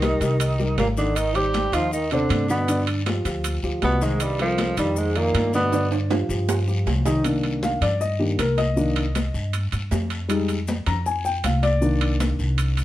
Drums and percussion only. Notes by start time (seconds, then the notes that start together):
0.02 high conga, high timbale, short guiro, maracas
0.21 high conga, high timbale, short guiro, maracas
0.40 high conga, high timbale, long guiro, maracas
0.59 high conga, maracas
0.78 high conga, high timbale, low timbale, short guiro, maracas
0.97 short guiro, maracas
1.15 high conga, high timbale, long guiro, maracas
1.35 high conga, high timbale, maracas
1.54 high conga, high timbale, short guiro, maracas
1.72 high conga, high timbale, short guiro, maracas
1.91 high conga, long guiro, maracas
2.11 high conga, high timbale, maracas
2.29 high conga, high timbale, short guiro, maracas
2.48 short guiro, maracas
2.68 high conga, high timbale, long guiro, maracas
2.87 high conga, high timbale, maracas
3.06 high conga, high timbale, short guiro, maracas
3.25 high conga, high timbale, short guiro, maracas
3.44 high conga, high timbale, long guiro, maracas
3.63 high conga, maracas
3.82 high conga, high timbale, low timbale, short guiro, maracas
4.01 short guiro, maracas
4.20 high conga, high timbale, long guiro, maracas
4.39 high conga, high timbale, maracas
4.58 high conga, high timbale, short guiro, maracas
4.77 high conga, high timbale, short guiro, maracas
4.96 high conga, long guiro, maracas
5.15 high conga, high timbale, maracas
5.34 high conga, high timbale, short guiro, maracas
5.53 high conga, short guiro, maracas
5.72 high conga, high timbale, long guiro, maracas
5.92 high conga, high timbale, maracas
6.10 high conga, high timbale, short guiro, maracas
6.30 high conga, short guiro, maracas
6.49 high conga, low timbale, long guiro, maracas
6.68 high conga, maracas
6.87 high conga, low timbale, short guiro, maracas
7.06 low timbale, short guiro, maracas
7.24 high conga, high timbale, long guiro, maracas
7.43 high conga, high timbale
7.63 high conga, short guiro, maracas
7.82 high conga, low conga, high timbale, short guiro, maracas
8.01 high conga, long guiro, maracas
8.20 high conga
8.39 high conga, high timbale, short guiro, maracas
8.58 high conga, high timbale, short guiro, maracas
8.77 high conga, long guiro, maracas
8.96 high conga, high timbale
9.15 high conga, high timbale, short guiro, maracas
9.34 short guiro, maracas
9.53 high conga, high timbale, long guiro, maracas
9.72 high conga, high timbale, maracas
9.91 high conga, low timbale, short guiro, maracas
10.10 high timbale, short guiro, maracas
10.29 high conga, high timbale, long guiro, maracas
10.49 high conga, high timbale, maracas
10.67 high conga, short guiro, maracas
10.86 high conga, low conga, high timbale, short guiro, maracas
11.06 high conga, long guiro, maracas
11.25 high conga, maracas
11.44 high conga, high timbale, short guiro, maracas
11.63 high conga, high timbale, short guiro, maracas
11.82 high conga, long guiro, maracas
12.01 high conga, high timbale
12.20 high conga, high timbale, short guiro, maracas
12.39 short guiro, maracas
12.58 high conga, high timbale, long guiro, maracas
12.77 high conga, high timbale, maracas